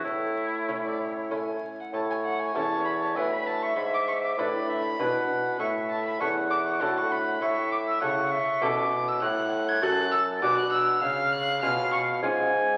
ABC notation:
X:1
M:3/4
L:1/16
Q:1/4=99
K:A
V:1 name="Violin"
c4 c d c2 g3 f | a g f g a2 b a g b a c' | b d' c' d' b8 | c'2 a b c'2 d' c' a c' b2 |
c'2 d' e' c'4 d'3 e' | [K:F#m] f'3 g' f'2 e'2 d' f' e'2 | ^e'2 f'2 e'2 c'2 z4 |]
V:2 name="Oboe"
E8 z4 | c8 e4- | e4 d2 e2 f4 | e4 f8 |
e4 f2 e4 z2 | [K:F#m] f4 a4 f4 | ^e8 g4 |]
V:3 name="Lute"
z4 [A,CE]4 [A,CE]4 | z4 [CEA]4 [DFB]4 | z4 [DEB]4 [DEB]4 | z4 [CEA]4 [DFA]4 |
z4 [CEA]4 [CEA]4 | [K:F#m] z4 [CFA]4 [DFG]4 | z4 [C^EG]4 [CEG]4 |]
V:4 name="Lute" clef=bass
A,,8- A,,2 z2 | A,,4 E,,4 A,,4 | G,,4 A,,4 B,,4 | A,,4 E,,4 A,,4 |
A,,4 C,2 z2 B,,4 | [K:F#m] A,,4 F,,4 B,,4 | C,4 B,,4 G,,4 |]
V:5 name="Bassoon" clef=bass
A,,8- A,,2 z2 | A,,4 E,,4 A,,4 | G,,4 A,,4 B,,4 | A,,4 E,,4 A,,4 |
A,,4 C,2 z2 B,,4 | [K:F#m] A,,4 F,,4 B,,4 | C,4 B,,4 G,,4 |]